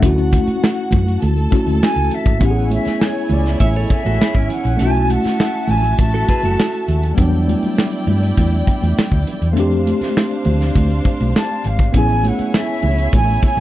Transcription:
0.00 D2 A3 C#4 E4 F#4 F#5, kick, closed hi-hat, low conga
0.06 F#4
0.18 closed hi-hat
0.32 kick, closed hi-hat, high conga
0.47 muted fingered electric bass stroke, closed hi-hat, high conga
0.62 snare, muted conga
0.91 F#2, kick, closed hi-hat, muted conga, high conga, low conga
1.08 closed hi-hat
1.22 D2 A4 A5, closed hi-hat, high conga
1.38 closed hi-hat
1.51 A3 C#4 E4 F#4, kick, closed hi-hat
1.66 D2, closed hi-hat, high conga
1.81 G#5, snare, muted conga
1.96 C#2, closed hi-hat
2.11 E5, closed hi-hat, muted conga, low conga
2.26 G#1, kick, closed hi-hat
2.38 A1 B3 C#4 E4 G#5, kick, closed hi-hat, muted conga, low conga
2.42 G4 C#5 F#5
2.51 G#4
2.70 E5, closed hi-hat, muted conga, high conga
2.85 muted fingered electric bass stroke, snare, closed hi-hat, high conga
3.01 C#5, snare
3.30 C#2 D5, closed hi-hat, muted conga, high conga, low conga
3.46 snare, closed hi-hat
3.60 A1 C#5 E5, kick, closed hi-hat, muted conga, high conga
3.75 A4 C#5, closed hi-hat
3.84 D#5
3.90 E5, kick, closed hi-hat, muted conga
4.05 A1 F#4 A4, closed hi-hat, high conga
4.19 E4 G#4, snare, muted conga
4.35 G#1 C#4 E4, kick
4.50 F#5, closed hi-hat, muted conga, low conga
4.65 A#1, closed hi-hat
4.77 B1 A3 C#4 D#4 F#4 E5 G#5 A5, closed hi-hat, muted conga, low conga
4.82 F#4
4.87 E4
4.95 closed hi-hat
5.08 F#5, closed hi-hat, muted conga, high conga
5.24 muted fingered electric bass stroke, snare, closed hi-hat, high conga
5.40 snare
5.68 A1 G#5, open hi-hat, muted conga, high conga, low conga
5.84 closed hi-hat
5.98 A1 A5, kick, closed hi-hat, muted conga, high conga
6.14 F#4 A4
6.28 G#4 B4, kick, closed hi-hat, muted conga
6.43 F#1 F#4 A4, closed hi-hat, high conga
6.60 snare
6.73 closed hi-hat
6.88 D#2, closed hi-hat, muted conga, low conga
7.03 closed hi-hat
7.15 E2 G3 B3 D4 E4 D5 G5, kick, closed hi-hat, muted conga, low conga
7.21 F#3
7.33 closed hi-hat
7.48 closed hi-hat, muted conga, high conga
7.63 muted fingered electric bass stroke, closed hi-hat, high conga
7.78 snare, muted conga
7.93 closed hi-hat
8.07 G2, closed hi-hat, high conga, low conga
8.23 closed hi-hat
8.37 E2, kick, closed hi-hat, muted conga, high conga
8.67 kick, closed hi-hat, muted conga
8.82 E2, closed hi-hat, high conga
8.97 muted fingered electric bass stroke, snare, muted conga
9.12 D2, kick
9.27 closed hi-hat, muted conga, low conga
9.42 E2, closed hi-hat
9.53 F2 A3 C4 D4 C5 F5, closed hi-hat, low conga
9.60 G4
9.72 closed hi-hat
9.86 closed hi-hat, high conga
10.01 muted fingered electric bass stroke, snare, closed hi-hat, high conga
10.17 snare
10.31 closed hi-hat
10.45 D2, closed hi-hat, muted conga, high conga, low conga
10.61 snare, closed hi-hat
10.75 D2, kick, closed hi-hat, high conga
10.90 closed hi-hat
11.05 kick, closed hi-hat, muted conga
11.20 B1, closed hi-hat, high conga
11.35 A5, snare, muted conga
11.64 G#1 F5, closed hi-hat, muted conga, low conga
11.79 kick, closed hi-hat
11.92 A1 B3 C#4 E4 C#5 G#5, kick, closed hi-hat, low conga
11.98 G#4
12.09 closed hi-hat
12.23 F#5, closed hi-hat, muted conga, high conga
12.39 muted fingered electric bass stroke, closed hi-hat, high conga
12.53 E5, snare, muted conga
12.69 closed hi-hat
12.82 C#2, closed hi-hat, high conga, low conga
12.98 closed hi-hat
13.13 A1 G#5, kick, closed hi-hat, high conga
13.28 closed hi-hat
13.42 G#5, kick, closed hi-hat, muted conga
13.57 A1

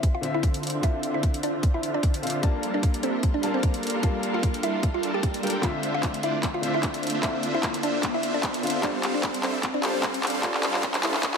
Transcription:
Already playing: D3 C4 F4 E5, riser
0.03 kick, closed hi-hat
0.14 F4 F5
0.21 D1 D3 C4 D4 F4 C5 E5, closed hi-hat
0.25 E5
0.34 E4 E5
0.43 kick, closed hi-hat
0.54 closed hi-hat
0.63 closed hi-hat
0.67 closed hi-hat
0.70 closed hi-hat
0.74 D1 D3 D4 F4 C5 E5
0.81 D3 C4 D4 E4 F4 C5 E5, kick, closed hi-hat
1.03 closed hi-hat
1.14 E4 E5
1.23 kick, closed hi-hat
1.34 closed hi-hat
1.43 D1 D3 D4 F4 C5 D5 E5, closed hi-hat
1.63 kick, closed hi-hat
1.74 D1 D3 D4 E4 F4 C5 E5
1.83 closed hi-hat
1.94 D4 D5
2.03 D2 D3, kick, closed hi-hat
2.14 closed hi-hat
2.22 D1 D3 C4 D4 F4 C5 E5 F5, closed hi-hat
2.27 closed hi-hat
2.30 closed hi-hat
2.41 G3 A#3 D4 F4 A4 A#4 D5 A5, kick, closed hi-hat
2.45 A#3
2.63 closed hi-hat
2.74 D4 D5
2.83 kick, closed hi-hat
2.94 closed hi-hat
3.03 G1 G3 C4 D4 A4 A#4 C5 E5, closed hi-hat
3.23 kick, closed hi-hat
3.34 D4 D5
3.41 G1 G3 A#3 D4 F4 A4 A#4 F5 A5, closed hi-hat
3.54 C4 C5
3.63 kick, closed hi-hat
3.74 closed hi-hat
3.83 closed hi-hat
3.87 closed hi-hat
3.90 closed hi-hat
3.94 G1 G3 D4 A4 A#4 F5
4.01 G3 D4 F4 A4 A#4 F5 A5, kick, closed hi-hat
4.05 A#3
4.23 closed hi-hat
4.34 F4 F5
4.43 kick, closed hi-hat
4.54 closed hi-hat
4.63 G1 G3 D4 E4 A4 A#4 E5 F5, closed hi-hat
4.83 kick, closed hi-hat
4.94 G1 G3 D4 F4 A4 A#4 F5
5.03 G1 G3 D4 A4 A#4 A5, closed hi-hat
5.14 G4 G5
5.23 kick, closed hi-hat
5.34 closed hi-hat
5.42 G2 G3 D4 F4 A4 A#4 G5, closed hi-hat
5.47 closed hi-hat
5.50 closed hi-hat
5.61 D3 C4 D4 F4 E5 F5, kick, clap, closed hi-hat
5.65 E5
5.83 closed hi-hat
5.94 F4 F5
6.03 kick, clap, closed hi-hat
6.14 closed hi-hat
6.23 D3 D4 E4 F4 C5 D5 E5, closed hi-hat
6.43 kick, clap, closed hi-hat
6.54 F4 F5
6.61 D3 C4 D4 F4 C5 E5, closed hi-hat
6.65 E5
6.74 E4 E5
6.83 kick, clap, closed hi-hat
6.94 closed hi-hat
7.03 closed hi-hat
7.07 closed hi-hat
7.10 closed hi-hat
7.14 D3 D4 F4 C5 E5
7.21 D3 C4 E4 F4 E5, kick, clap, closed hi-hat
7.43 closed hi-hat
7.54 E4 E5
7.63 kick, clap, closed hi-hat
7.74 closed hi-hat
7.83 D3 D4 F4 C5 D5 E5, closed hi-hat
8.03 kick, clap, closed hi-hat
8.14 D3 D4 E4 F4 C5 E5
8.23 closed hi-hat
8.34 D4 D5
8.43 D2 D3 D4 F4 E5, kick, clap, closed hi-hat
8.54 closed hi-hat
8.62 D3 C4 D4 F4 C5 E5 F5, closed hi-hat
8.67 closed hi-hat
8.70 closed hi-hat
8.81 G3 D4 F4 A4 D5, kick, clap, closed hi-hat
8.85 C5
9.03 clap, closed hi-hat
9.14 D4 D5
9.23 kick, clap, closed hi-hat
9.34 closed hi-hat
9.43 G3 C4 D4 A4 C5 E5, clap, closed hi-hat
9.63 kick, clap, closed hi-hat
9.74 D4 D5
9.81 G3 D4 F4 A4 C5 F5, clap, closed hi-hat
9.85 C5
9.94 C4 C5
10.03 kick, clap, closed hi-hat
10.14 closed hi-hat
10.23 clap, closed hi-hat
10.27 closed hi-hat
10.30 closed hi-hat
10.34 G1 G3 D4 A4 C5 F5
10.41 G3 D4 F4 A4 C5 F5, kick, clap, closed hi-hat
10.45 D5
10.54 clap
10.63 clap, closed hi-hat
10.74 F4 F5, clap
10.83 kick, clap, closed hi-hat
10.94 clap, closed hi-hat
11.03 G3 D4 E4 A4 C5 E5 F5, clap, closed hi-hat
11.14 clap
11.23 kick, clap, closed hi-hat, swell
11.34 G3 D4 F4 A4 C5 F5, clap

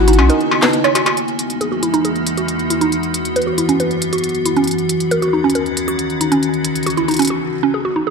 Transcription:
Already playing: G#1 B3 D#4 F#4 G#5
0.08 D#4, closed hi-hat
0.13 closed hi-hat
0.19 B1 C#4, struck metal
0.28 D#4 A#4, closed hi-hat
0.41 closed hi-hat
0.51 struck metal
0.62 B4, snare, closed hi-hat, struck metal
0.73 closed hi-hat
0.84 C#5, closed hi-hat, struck metal
0.95 F#4, closed hi-hat, struck metal
1.06 F#4, closed hi-hat, struck metal
1.17 E2 E3 G#3 A#3 D#4 F#4, closed hi-hat
1.28 closed hi-hat
1.39 closed hi-hat
1.50 closed hi-hat
1.61 G#4, closed hi-hat
1.72 F#4
1.83 E4, closed hi-hat
1.94 D#4, closed hi-hat
2.05 G#4, closed hi-hat
2.16 closed hi-hat
2.27 closed hi-hat
2.37 F#4, closed hi-hat
2.48 closed hi-hat
2.59 closed hi-hat
2.70 E4, closed hi-hat
2.81 D#4, closed hi-hat
2.92 F#2 B3, closed hi-hat
3.03 closed hi-hat
3.14 closed hi-hat
3.25 closed hi-hat
3.36 B4, closed hi-hat
3.42 closed hi-hat
3.47 F#4
3.58 E4, closed hi-hat
3.69 C#4, closed hi-hat
3.80 B4, closed hi-hat
3.91 closed hi-hat
4.02 closed hi-hat
4.13 F#4, closed hi-hat
4.18 closed hi-hat
4.24 closed hi-hat
4.29 closed hi-hat
4.35 closed hi-hat
4.46 E4, closed hi-hat
4.56 C#4, closed hi-hat
4.64 D#2, closed hi-hat
4.67 D#3 C#4, closed hi-hat
4.71 closed hi-hat
4.78 closed hi-hat
4.89 closed hi-hat
5.00 closed hi-hat
5.11 A#4, closed hi-hat
5.22 F#4, closed hi-hat
5.33 D#4
5.44 C#4
5.50 closed hi-hat
5.55 A#4, closed hi-hat
5.66 closed hi-hat
5.77 closed hi-hat
5.88 F#4, closed hi-hat
5.99 closed hi-hat
6.10 closed hi-hat
6.21 D#4, closed hi-hat
6.32 C#4, closed hi-hat
6.43 closed hi-hat
6.54 closed hi-hat
6.65 closed hi-hat
6.75 closed hi-hat
6.83 F#4, closed hi-hat
6.86 closed hi-hat
6.90 closed hi-hat
6.97 E4, closed hi-hat
7.08 D#4, closed hi-hat
7.11 closed hi-hat
7.14 closed hi-hat
7.17 closed hi-hat
7.19 C#4, closed hi-hat
7.22 closed hi-hat
7.25 closed hi-hat
7.27 F#4, closed hi-hat
7.63 C#4
7.74 G#4
7.85 F#4
7.96 D#4
8.07 G#4

